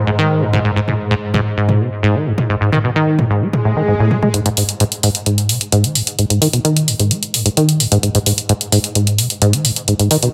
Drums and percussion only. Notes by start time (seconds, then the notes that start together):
0.53 mid tom
0.88 mid tom
1.34 mid tom
1.69 mid tom
2.38 mid tom
2.72 mid tom
3.19 mid tom
3.53 mid tom
4.11 mid tom
4.23 mid tom
4.34 closed hi-hat
4.46 closed hi-hat
4.57 open hi-hat
4.69 closed hi-hat
4.80 closed hi-hat
4.92 closed hi-hat
5.03 open hi-hat
5.15 closed hi-hat
5.26 closed hi-hat
5.38 closed hi-hat
5.49 open hi-hat
5.61 closed hi-hat
5.72 closed hi-hat
5.84 closed hi-hat
5.95 open hi-hat
6.07 closed hi-hat
6.19 closed hi-hat
6.30 closed hi-hat
6.42 open hi-hat
6.53 closed hi-hat
6.65 closed hi-hat
6.77 closed hi-hat
6.88 open hi-hat
7.00 closed hi-hat
7.11 closed hi-hat
7.23 closed hi-hat
7.34 open hi-hat
7.46 closed hi-hat
7.57 closed hi-hat
7.69 closed hi-hat
7.80 open hi-hat
7.92 closed hi-hat
8.03 closed hi-hat
8.15 closed hi-hat
8.26 open hi-hat
8.38 closed hi-hat
8.49 closed hi-hat
8.61 closed hi-hat
8.72 open hi-hat
8.84 closed hi-hat
8.95 closed hi-hat
9.07 closed hi-hat
9.18 open hi-hat
9.30 closed hi-hat
9.42 closed hi-hat
9.53 closed hi-hat
9.65 open hi-hat
9.76 closed hi-hat
9.88 closed hi-hat
9.99 closed hi-hat
10.11 open hi-hat
10.23 closed hi-hat